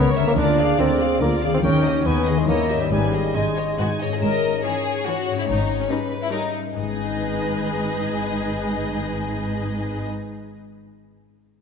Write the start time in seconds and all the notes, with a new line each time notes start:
Already playing: C#2 C#3 A#3 E4 A#4 C#5
0.16 D3 A#4 C#5 E5
0.24 A#3
0.28 F4
0.33 G#4
0.37 D2 D3 D4 F4 A#4 D5
0.58 G#4 D5 F5
0.79 D2 D3 C4 F4 A#4 D5
1.00 G#4 D5 F5
1.21 D2 D3 A#3 F4 A#4 D5
1.42 D#3 G#4 D5 F5
1.50 A#3
1.54 C4 D#4
1.59 G4
1.63 D#2 D#3 C#4 D#4 A#4 G5
1.85 D#3 G4 D#5
1.92 B3
1.97 D#4
2.01 G#4
2.05 D#2 D#3 B3 D#4 B4 G#5
2.27 D#3 G#4 D#5
2.35 G#3 C#4
2.40 E4
2.44 D#3 G4 D#5
2.49 D#2 A#3 E4 C#5
2.70 G#2 G4 D#5 E5
2.78 G3 B3
2.83 D#4
2.87 G#4
2.91 G#1 G#2 G3 D#4 B4 G#5
3.14 G#4 D#5
3.34 G#1 G#2 G#3 D#4 D#5 G#5
3.57 G#4 C#5 D#5
3.78 G#1 G#2 D#4 F#4 B4 G#5
4.01 G#2 G#4 C#5 D#5
4.09 C#4
4.13 E4 G#4
4.17 G#4
4.21 G#1 G#2 A#4 D#5, triangle
4.65 E3 C#4 G#4 C#5
5.07 E3 C#4 F#4
5.30 G#2
5.35 C#4 E4
5.39 D#4
5.44 G4
5.48 G#1 G#2 D#4
5.81 C#4
5.90 G3 C#4 D#4 B4
6.22 E4
6.32 G3 C#4 D#4 A#4
6.75 G#1 G#2 D#4 G#4 B4 D#5
6.82 G#3
6.89 B3
6.96 D#4
7.03 G#4
7.10 D#5